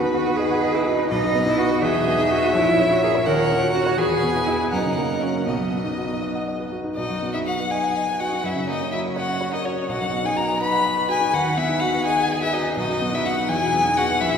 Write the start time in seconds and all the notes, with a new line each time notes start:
Already playing: D#2 D#3 B3 F#4 B4
0.03 D#4
0.13 F#4
0.26 B4
0.37 G#4 D#5
0.51 F#5
0.63 D#5
0.74 E4 B4
0.86 D#4 F#4
0.99 D#4
1.10 B1 D#4 B4 D#5
1.23 F#2
1.35 B3
1.46 D#4 E4
1.58 F#4
1.70 B4
1.82 E2 G#4 D#5 E5
1.95 B2
2.07 B3
2.19 D#4
2.31 F#4 G#4
2.43 B4
2.54 A#1 E4 C#5
2.66 A#2
2.79 C#4
2.91 E4 F#4
3.03 G#4 A#4
3.15 C#5
3.26 D#2 A#4 F#5
3.39 A#2
3.50 C#4
3.62 F#4
3.73 C#4 F#4
3.87 C#5
3.97 E2 G#4 B4 G#5
4.10 B2
4.23 B3
4.35 E4
4.47 E4 G#4
4.61 B4
4.71 F#2 D#4 A#4 F#5
4.85 C#3
4.98 A#3
5.10 C#4
5.22 C#4 F#4
5.35 A#4
5.47 B1 B3 D#5
5.60 F#2
5.72 B3
5.85 D#4
5.98 F#4
6.09 B4
6.22 D#5
6.35 F#5
6.48 D#5
6.60 B4
6.72 F#4
6.84 D#4
6.96 B1 D#4 F#4 D#5
7.10 F#2
7.22 B3
7.34 D#4 E4 E5
7.46 F#4 F#5
7.59 B4
7.71 D#4 G#4 D#5 G#5
7.84 F#5
7.96 D#5
8.08 B4
8.19 F#4 F#5
8.32 D#4
8.43 F#2 C#4 E4 E5
8.55 C#3
8.68 A#3 D#4 D#5
8.81 C#4
8.91 E4 F#4 E5
9.05 A#4
9.15 F#4 C#5 F#5
9.29 F#5
9.41 C#5
9.52 D#4 A#4 D#5
9.64 C#4 F#4 C#5
9.77 C#4
9.88 B1 D#4 F#4 F#5
10.01 F#2
10.13 B3
10.24 D#4 G#4 G#5
10.36 F#4 A#4 A#5
10.49 B4
10.60 F#4 B4 D#5 B5
10.72 F#5
10.85 D#5
10.96 B4
11.09 F#4 G#4 G#5
11.21 D#4
11.32 D#2 F#4 B4 F#5
11.45 D#3
11.57 B3 E4 E5
11.69 D#4
11.80 F#4 F#5
11.93 B4
12.05 G#4 D#5 G#5
12.17 F#5
12.30 D#5
12.42 E4 B4 E5
12.53 D#4 F#4 D#5
12.65 D#4
12.77 B1 D#4 F#4 D#5
12.89 F#2
13.01 B3
13.13 D#4 E4 E5
13.25 F#4 F#5
13.37 B4
13.49 E2 E4 G#4 G#5
13.62 B2
13.74 B3
13.85 D#4
13.97 F#4 G#4 F#5
14.09 B4
14.21 A#1 E4 G#4 E5
14.34 A#2